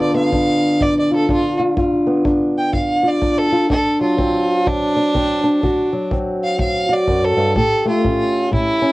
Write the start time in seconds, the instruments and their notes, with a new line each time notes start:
Already playing: steel-string acoustic guitar G2 D3 B3 D4 F4
0.02 fiddle D5
0.14 steel-string acoustic guitar B3, fiddle F5
0.32 steel-string acoustic guitar G2 D4, kick
0.81 steel-string acoustic guitar G2, fiddle D5, kick
1.00 fiddle D5
1.11 steel-string acoustic guitar F4
1.16 fiddle A4
1.29 steel-string acoustic guitar G2 D4, fiddle F4, kick
1.59 steel-string acoustic guitar F4
1.77 steel-string acoustic guitar G2 F4, kick
2.07 steel-string acoustic guitar B3
2.25 steel-string acoustic guitar G2 D4, kick
2.58 fiddle G5
2.73 steel-string acoustic guitar G2, fiddle F5, kick
3.03 steel-string acoustic guitar F4
3.08 fiddle D5
3.21 steel-string acoustic guitar G2 D4, kick
3.38 fiddle A4
3.52 steel-string acoustic guitar F4
3.70 steel-string acoustic guitar D2 D4, fiddle A4, kick
4.01 steel-string acoustic guitar F#3, fiddle F4
4.17 steel-string acoustic guitar D2 C4, kick
4.67 steel-string acoustic guitar D2, fiddle D4, kick
4.96 steel-string acoustic guitar D4
5.14 steel-string acoustic guitar D2 C4, kick
5.44 steel-string acoustic guitar D4
5.63 steel-string acoustic guitar D2 F#4, kick
5.93 steel-string acoustic guitar F#3
6.11 steel-string acoustic guitar D2 C4, kick
6.44 fiddle F5
6.58 steel-string acoustic guitar D2, fiddle F5, kick
6.89 steel-string acoustic guitar F#4, fiddle D5
7.07 steel-string acoustic guitar F#2, kick
7.24 fiddle A4
7.36 steel-string acoustic guitar G2
7.56 steel-string acoustic guitar A2 G4, fiddle A4, kick
7.85 steel-string acoustic guitar A3, fiddle F4
8.04 steel-string acoustic guitar A2 C#4, kick
8.51 steel-string acoustic guitar A2, fiddle E4, kick
8.82 steel-string acoustic guitar C#4